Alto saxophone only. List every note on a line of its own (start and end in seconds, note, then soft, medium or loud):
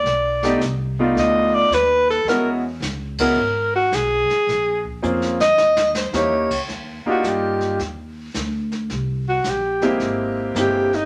0.00 0.58 D5 medium
1.19 1.56 D#5 medium
1.54 1.75 D5 medium
1.74 2.10 B4 medium
2.10 2.26 A4 medium
2.29 2.51 A#4 medium
3.21 3.71 A#4 medium
3.76 3.96 F#4 medium
3.95 4.86 G#4 medium
5.41 5.92 D#5 loud
5.97 6.17 C5 medium
6.16 6.61 C#5 medium
7.10 7.29 F#4 medium
7.28 7.81 G4 medium
9.29 9.51 F#4 medium
9.49 10.03 G4 medium
10.60 10.96 G4 medium
10.95 11.05 D#4 medium